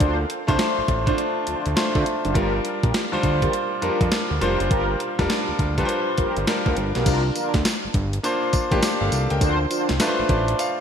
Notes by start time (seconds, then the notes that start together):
Already playing: A4 F5
0.00 D2 D4 F4 C5, kick, closed hi-hat
0.30 closed hi-hat
0.47 C2 A3 D4 F4 C5, kick, closed hi-hat
0.59 snare, closed hi-hat
0.78 A1
0.88 A1, kick, closed hi-hat
1.06 A3 D4 F4 C5, kick, closed hi-hat
1.18 closed hi-hat
1.47 D2 D4 F4 C5, closed hi-hat
1.66 D2, closed hi-hat
1.76 A3 D4 F4 C5, snare, closed hi-hat
1.95 D3 D4 F4 C5, kick
2.06 closed hi-hat
2.24 F#1 D4 F4 C5, closed hi-hat
2.34 G1 G3 D4 F4 G4 A#4, kick, closed hi-hat
2.65 closed hi-hat
2.83 A#1 F4 G4 A#4, kick, closed hi-hat
2.94 snare, closed hi-hat
3.12 D2 G3 D4 F4 C5
3.23 D2, kick, closed hi-hat
3.42 F4 G4 A#4, kick, closed hi-hat
3.53 closed hi-hat
3.82 F2 G3 D4 F4 G4 A#4, closed hi-hat
4.01 F2, kick, closed hi-hat
4.12 snare, closed hi-hat
4.31 D2
4.41 F1 G3 D4 F4 G4 A#4 C5, closed hi-hat
4.60 F#1, closed hi-hat
4.70 G1 F4 G4 A#4, kick, closed hi-hat
5.00 closed hi-hat
5.19 F1 G3 D4 F4 G4 A#4, kick, snare, closed hi-hat
5.30 snare, closed hi-hat
5.49 D2
5.59 D2, kick, closed hi-hat
5.77 G3 D4 F4 G4 A#4 B4, kick, closed hi-hat
5.85 C5, closed hi-hat
6.18 G1 F4 G4 A#4, kick, closed hi-hat
6.37 G1, closed hi-hat
6.47 G3 D4 F4 A#4, snare, closed hi-hat
6.66 D2 F4 G4 A#4, kick
6.77 G1, closed hi-hat
6.95 B1 F4 G4 A#4, snare, closed hi-hat
7.06 C2 D4 F4 A#4, kick, closed hi-hat, crash, tambourine
7.35 D4 F4 A#4, closed hi-hat, tambourine
7.54 D2, kick, snare, closed hi-hat
7.65 snare, closed hi-hat, tambourine
7.84 G1
7.94 G1, kick, closed hi-hat
8.13 closed hi-hat
8.23 A#3 D4 F4 C5, closed hi-hat, tambourine
8.53 A1, kick, closed hi-hat, tambourine
8.71 A1 A#3 D4 F4 G4 A#4, kick, closed hi-hat
8.82 F4 D5, snare, closed hi-hat, tambourine
9.01 G1 A4 F5
9.12 C2, closed hi-hat, tambourine
9.30 C#2 A#4 G5, closed hi-hat
9.41 D2 D4 F4 C5, kick, closed hi-hat, tambourine
9.70 D4 F4 C5, closed hi-hat, tambourine
9.89 C2, snare, closed hi-hat
10.00 A3 D4 F4 B4, snare, closed hi-hat, tambourine
10.07 C5
10.19 A1
10.29 A1 D5, kick, closed hi-hat
10.48 closed hi-hat
10.59 F5, closed hi-hat, tambourine